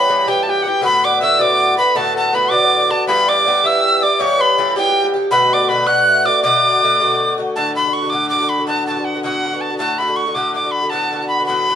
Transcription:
Already playing: B3 B4 C#5 E5 B5
0.08 G2 E3 B3 G4 A4
0.27 G2 E3 B3 G4 G5
0.43 A5
0.47 G4 G5
0.62 B3 G4 F#5
0.67 E3 G4 G5
0.81 A2 D3 B3 F#4 B4 B5
1.04 D5 D6
1.20 A2 D3 B3 F#4 E5 E6
1.38 A2 D3 B3 F#4 D5 D6
1.77 D3 B3 F#4 B4 B5
1.95 A2 D3 B3 F#4 A4 A5
2.16 A4 A5
2.33 A2 D3 B3 F#4 B4 B5
2.50 A2 D3 B3 F#4 D5 D6
2.64 D5
2.78 D5
2.89 D3 B3 F#4 A4 A5
3.07 G2 E3 B3 G4 B4 B5
3.27 D5 D6
3.45 G2 E3 B3 G4 D5
3.64 G2 E3 B3 G4 E5 E6
3.83 E5
4.01 E3 B3 G4 D5 D6
4.18 G2 E3 B3 G4 C#5 C#6
4.38 B4 B5
4.57 G2 E3 B3 G4 A4
4.75 G2 E3 B3 G4 G5
4.89 G4
5.04 G4
5.14 E3 B3 G4
5.31 B2 D3 A3 F#4 B4 B5
5.53 D5 D6
5.69 B2 D3 A3 F#4 B4 B5
5.87 B2 D3 A3 F#4 F#5 F#6
6.09 E5
6.25 D3 A3 F#4 D5 D6
6.43 B2 D3 A3 F#4 D5 D6
6.82 B2 D3 A3 F#4
7.00 B2 D3 A3 F#4
7.38 D3 A3 F#4
7.56 A2 D3 A3 F#4 A5
7.75 A2 D3 A3 F#4 B5
7.84 D3 A3 F#4
7.93 C#6
8.02 D3 A3 F#4
8.10 A2 D3 A3 D6
8.14 F#4
8.30 A2 D3 A3 D6
8.34 F#4
8.40 D3 A3 F#4
8.49 B5
8.58 D3 A3 F#4
8.67 A2 D3 B3 F#4 A5
8.87 A2 D3 B3 F#4 A5
8.97 D3 B3 F#4
9.04 F#5
9.14 D3 B3 F#4
9.23 A2 D3 B3 F#4 F#5
9.44 A2 D3 B3 F#4
9.53 D3 B3 F#4
9.61 A5
9.70 D3 B3 F#4
9.78 A2 D3 A3 F#4 A5
9.98 A2 D3 A3 F#4 B5
10.07 D3 A3 F#4
10.16 C#6
10.26 D3 A3 F#4
10.35 A2 D3 A3 F#4 D6
10.54 A2 D3 A3 F#4 D6
10.64 D3 A3 F#4
10.71 B5
10.81 D3 A3 F#4
10.90 A2 D3 B3 F#4 A5
11.11 A2 D3 B3 F#4
11.21 D3 B3 F#4
11.28 B5
11.39 D3 B3 F#4
11.46 A2 D3 B3 F#4 B5
11.68 A2 D3 B3 F#4

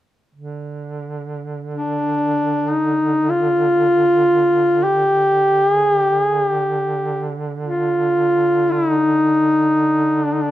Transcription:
0.35 D3
1.74 D4
2.69 D#4
3.29 F4
4.84 G4
5.72 G#4
5.96 G4
6.21 G#4
6.45 G4
7.64 F4
8.72 E4
8.90 D#4
10.25 D4
10.33 D#4
10.42 D4

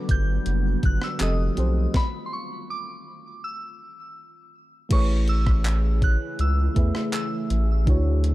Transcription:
Already playing: D3 F#3 G3 B3 D4 F#4 A4 B4 D6
0.09 G1 G6, kick, closed hi-hat
0.46 F#1, closed hi-hat
0.83 G1 F#6, kick, closed hi-hat
1.02 E6, cross-stick
1.19 F1 D#3 F3 A3 C4 F4 G4 A4 D#6, clap, closed hi-hat
1.23 D#5
1.55 B1 F3 C4 G4 A4, closed hi-hat
1.59 C5
1.94 B5, kick, snare
2.26 C6
2.33 C#6
2.70 D6
3.44 E6
4.89 A1 C#3 E3 A3 E4 G#4 B4 C#6, kick, closed hi-hat, crash
4.94 C#5
5.28 E6, closed hi-hat
5.46 kick, cross-stick
5.65 clap, closed hi-hat
6.02 F#6, kick, closed hi-hat
6.39 C#2 E6, closed hi-hat
6.74 E2 A3 E4 G#4 B4, kick, closed hi-hat
6.78 E5
6.95 cross-stick
7.13 E6, clap, closed hi-hat
7.50 A1, closed hi-hat
7.85 D2 D3 F#3 D4 E4 F#4 A4, kick, closed hi-hat
7.90 C#5
8.24 closed hi-hat

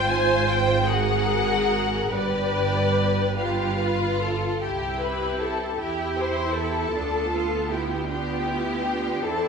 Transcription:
Already playing: G#1 G#2 F4 C5
0.09 G#5
0.49 G5
0.86 F#4 G#4 A#4 F#5
2.12 G1 G2 G4 B4 D5
3.37 F4 G4 F5
3.80 B4
4.22 A4
4.62 C2 C4 E4 G4 G5
5.01 B4 B5
5.39 A4 A5
5.79 E2 E4 G4 G5
6.18 C5 C6
6.56 A4 A5
6.94 D2 B3 D4 F4
7.32 F4
7.70 E4 G4 G5
8.09 B3 D4 F4 G4 G5
8.46 E4
8.85 D4
9.23 E2 C4 E4 A4 A5

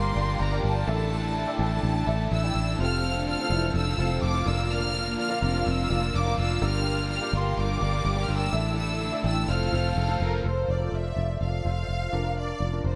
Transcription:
Already playing: G1 G2 F3 G3 A#3 D4 F4 G4 A#4 D5 F5 C6
0.14 G1 F3 A#3 D4 G4 A#4 D5 F5
0.38 G1 G2 D3 F3 A#3 D4 A#4 A#5
0.52 G4 A#4 D5 F5
0.62 G1 F3 A#3 D4 A#4 A5
0.86 A1 A2 D3 A3 D4 E4 A4 D5 E5
1.10 A3 D4 E4 A4
1.34 A2 D3 A3 D4 E4 A4
1.47 E4 A4 D5 G5
1.59 A1 A3 D4 E4 A4 D5 G5 A5
1.83 A1
2.06 A1 A3 D4 E4 A4 D5 E5
2.31 A1 A2 D3 A3 D4 E4 A4 E6
2.43 E4 A4 D5 G5
2.54 A1 A3 D4 E4 A4
2.78 F1 F2 C3 F3 A3 C4 F4 A4 C5 F5 F6
3.02 F3 A3 C4 A4
3.15 D3 D4
3.27 F2 C3 F3 A3 C4 A4 F6
3.39 F4 A4 C5 F5
3.50 F1 E3 F3 A3 C4 E4 F4 A4 C5 F5
3.74 F1 D3 D4 E6
3.98 F1 C3 F3 A3 C4 F4 A4 C5 F5
4.22 F1 F2 C3 F3 A3 C4 A4 D6
4.34 F4 A4 C5 F5
4.46 F1 F3 A#3 D4 F4 A#4 D5 F5 E6
4.70 F2 A#2 D3 F3 A#3 D4 F4 F6
4.94 F3 A#3 D4 F4
5.06 A#2 A#3
5.18 F2 D3 F3 A#3 D4 F4 F6
5.29 F4 A#4 D5 F5
5.41 F1 C3 F3 A#3 C4 D4 F4 A#4 D5 F5 F6
5.65 F1 C3 C4 E6
5.89 F1 A#2 F3 A#3 D4 F4 A#4 D5 F5
6.13 F1 F2 D3 F3 A#3 D4 F4 D6
6.25 F4 A#4 D5 F5
6.37 F1 F3 A#3 D4 F4 E6
6.61 G1 G2 G3 A#3 D4 F4 G4 A#4 D5 F5 F6
6.84 A#3 D4 F4
7.09 G3 A#3 D4 F4 F6
7.21 G4 A#4 D5 F5
7.32 G1 A#3 D4 F4 G4 A#4 D5 F5 C6
7.57 G1 D6
7.81 G1 A#3 D4 F4 G4 A#4 D5 F5
8.04 G1 G3 A#3 D4 F4
8.16 G4 A#4 D5 G5
8.23 F6
8.28 G1 A#3 D4 F4 E6
8.52 A1 A2 D3 A3 D4 E4 A4 D5 E5
8.76 A3 D4 E4 A4 E6
9.00 A2 D3 A3 D4 E4 A4
9.12 E4 A4 D5 E5
9.23 A1 A3 D4 E4 A4 D5 G5 E6
9.48 F1 F2 F3 A3 C4 F4 A4 C5 F5 F6
9.71 F1 C4 F4 A4 C5 F5
9.76 A3
9.96 F1 F2 F3 A3 C4 F4 A4
10.08 F4 A4 C5 F5
10.20 F1 A3 C4 F4 A4
10.24 A#4
10.44 F1 F4 A4 C5
10.68 F1 D5
10.79 F4 A4 C5
10.92 F1 E5
11.16 F1 F4 A4 D5
11.41 F1 F5
11.64 F1 F4 A4 C5
11.88 F1
12.12 F1 D4 F4 A#4
12.39 D5
12.60 F1
12.72 D4 F4 A#4
12.84 F1 C5

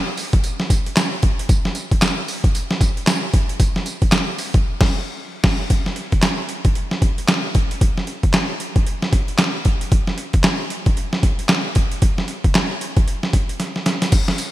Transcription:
0.17 open hi-hat, tambourine
0.33 kick, closed hi-hat
0.44 closed hi-hat, tambourine
0.60 snare
0.70 kick, closed hi-hat, tambourine
0.86 closed hi-hat
0.97 snare, clap, closed hi-hat, tambourine
1.23 kick, closed hi-hat
1.39 closed hi-hat
1.49 kick, closed hi-hat, tambourine
1.65 snare
1.75 closed hi-hat, tambourine
1.91 kick, closed hi-hat
2.02 snare, clap, closed hi-hat, tambourine
2.28 open hi-hat, tambourine
2.44 kick, closed hi-hat
2.55 closed hi-hat, tambourine
2.71 snare
2.81 kick, closed hi-hat, tambourine
2.97 closed hi-hat
3.07 snare, clap, closed hi-hat, tambourine
3.33 kick, closed hi-hat
3.49 closed hi-hat
3.60 kick, closed hi-hat, tambourine
3.76 snare
3.86 closed hi-hat, tambourine
4.02 kick, closed hi-hat
4.12 snare, clap, closed hi-hat, tambourine
4.38 open hi-hat, tambourine
4.54 kick, closed hi-hat
4.81 kick, snare, crash
5.44 kick, snare, crash
5.70 kick, closed hi-hat
5.86 snare
5.96 closed hi-hat
6.12 kick, closed hi-hat
6.22 snare, clap, closed hi-hat
6.49 closed hi-hat
6.65 kick, closed hi-hat
6.75 closed hi-hat
6.91 snare
7.02 kick, closed hi-hat
7.18 closed hi-hat
7.28 snare, clap, closed hi-hat
7.55 kick, closed hi-hat
7.71 closed hi-hat
7.81 kick, closed hi-hat
7.98 snare
8.07 closed hi-hat
8.23 kick, closed hi-hat
8.33 snare, clap, closed hi-hat
8.60 closed hi-hat
8.76 kick, closed hi-hat
8.87 closed hi-hat
9.02 snare
9.13 kick, closed hi-hat
9.28 closed hi-hat
9.39 snare, clap, closed hi-hat
9.65 kick, closed hi-hat
9.81 closed hi-hat
9.92 kick, closed hi-hat
10.07 snare
10.18 closed hi-hat
10.33 kick, closed hi-hat
10.44 snare, clap, closed hi-hat
10.70 closed hi-hat
10.86 kick, closed hi-hat
10.97 closed hi-hat
11.13 snare
11.23 kick, closed hi-hat
11.39 closed hi-hat
11.49 snare, clap, closed hi-hat
11.75 kick, closed hi-hat
11.91 closed hi-hat
12.02 kick, closed hi-hat
12.18 snare
12.28 closed hi-hat
12.44 kick, closed hi-hat
12.55 snare, clap, closed hi-hat
12.81 closed hi-hat
12.97 kick, closed hi-hat
13.08 closed hi-hat
13.23 snare
13.33 kick, closed hi-hat
13.49 closed hi-hat
13.60 snare, closed hi-hat
13.76 snare
13.86 snare, closed hi-hat
14.02 snare, closed hi-hat
14.12 kick, closed hi-hat, crash, tambourine
14.28 snare
14.38 closed hi-hat, tambourine

